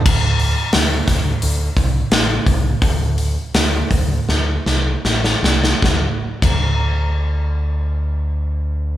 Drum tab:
CC |x---------------|----------------|---x------------|
HH |--o-o-o-o-o-o-o-|o-o-o-o---------|----------------|
SD |----o-o-----o---|----o---o-o-oooo|o---------------|
BD |o-----o---o---o-|o-----o---------|o--o------------|